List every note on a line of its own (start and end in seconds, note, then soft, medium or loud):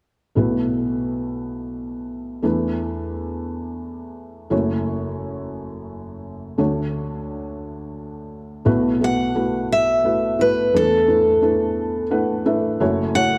0.35 2.40 B1 soft
0.35 2.40 B2 soft
0.35 2.40 A3 medium
0.35 2.40 E4 soft
0.35 2.41 F#4 soft
0.35 2.41 B4 medium
2.42 4.47 E2 soft
2.42 4.47 E3 soft
2.42 4.47 A3 medium
2.42 4.47 D4 soft
2.42 4.47 E4 soft
2.42 4.48 B4 medium
4.50 6.55 F#1 medium
4.50 6.55 F#2 medium
4.50 6.54 A3 medium
4.50 6.55 E4 medium
4.50 6.55 F#4 soft
4.50 6.55 C#5 medium
6.58 8.62 D2 medium
6.58 8.62 D3 medium
6.58 8.62 A3 medium
6.58 8.62 D4 medium
6.58 8.62 F#4 soft
6.58 8.63 C#5 medium
8.65 10.69 B1 medium
8.65 10.69 B2 medium
8.65 8.96 A3 medium
8.65 8.96 E4 medium
8.65 8.97 F#4 medium
8.65 8.97 B4 medium
9.01 9.31 A3 soft
9.01 9.32 E4 soft
9.01 9.32 F#4 soft
9.01 9.32 B4 medium
9.01 9.68 F#5 medium
9.35 9.96 A3 medium
9.35 9.96 E4 soft
9.35 9.96 F#4 soft
9.35 9.97 B4 medium
9.72 10.42 E5 medium
10.04 10.35 A3 soft
10.04 10.35 E4 soft
10.04 10.35 F#4 soft
10.04 10.35 B4 medium
10.39 10.72 A3 medium
10.39 10.73 E4 medium
10.39 10.74 F#4 medium
10.39 10.73 B4 medium
10.39 10.76 B4 medium
10.74 12.77 E2 soft
10.74 12.77 E3 medium
10.74 11.04 A3 medium
10.74 11.04 D4 medium
10.74 11.04 E4 medium
10.74 12.44 A4 medium
10.74 11.05 B4 medium
11.08 11.38 A3 medium
11.08 11.38 D4 soft
11.08 11.38 E4 soft
11.08 11.39 B4 medium
11.41 12.03 A3 medium
11.41 12.03 D4 medium
11.41 12.03 E4 soft
11.41 12.04 B4 medium
12.10 12.41 A3 medium
12.10 12.42 D4 medium
12.10 12.42 E4 medium
12.10 12.42 B4 medium
12.10 12.44 F#5 medium
12.45 12.79 A3 medium
12.45 12.81 D4 medium
12.45 12.79 E4 medium
12.45 12.81 B4 medium
12.45 12.78 E5 medium
12.80 13.38 F#1 medium
12.80 13.38 F#2 medium
12.80 13.11 A3 medium
12.80 13.11 E4 medium
12.80 13.11 F#4 medium
12.80 13.11 C#5 medium
13.15 13.38 A3 medium
13.15 13.38 E4 medium
13.15 13.38 F#4 soft
13.15 13.38 C#5 medium
13.15 13.38 F#5 medium